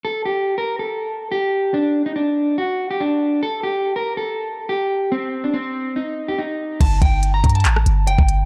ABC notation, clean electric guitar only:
X:1
M:4/4
L:1/16
Q:1/4=142
K:Gm
V:1 name="Clean electric guitar"
A2 G3 B2 A4- A G4 | D3 E D4 ^F3 G D4 | A2 G3 B2 A4- A G4 | C3 D C4 E3 G E4 |
a2 g3 b2 a4- a g4 |]